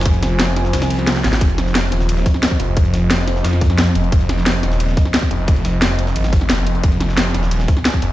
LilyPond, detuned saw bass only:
\new Staff \with { instrumentName = "Detuned saw bass" } { \clef bass \time 4/4 \key f \minor \tempo 4 = 177 f,,2 c,4. aes,,8 | f,,4. ees,,4 r4 f,,8~ | f,,2 f,4. f,,8 | f,,4. ees,,4 r4 f,,8~ |
f,,2 aes,,4 f,,4 | f,,4. ees,,4 r4 f,,8 | }